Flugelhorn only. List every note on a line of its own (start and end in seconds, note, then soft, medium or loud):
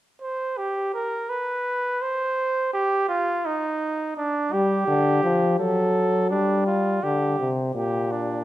0.21 0.59 C5 medium
0.58 0.93 G4 medium
0.94 1.31 A#4 medium
1.29 2.03 B4 medium
2.02 2.73 C5 medium
2.73 3.08 G4 medium
3.08 3.47 F4 medium
3.46 4.16 D#4 medium
4.17 4.54 D4 medium
4.53 5.59 G4 medium
5.59 6.30 A4 medium
6.30 6.66 D4 medium
6.67 7.05 F4 medium
7.03 7.50 G4 medium
7.75 8.13 G4 medium
8.12 8.44 D4 medium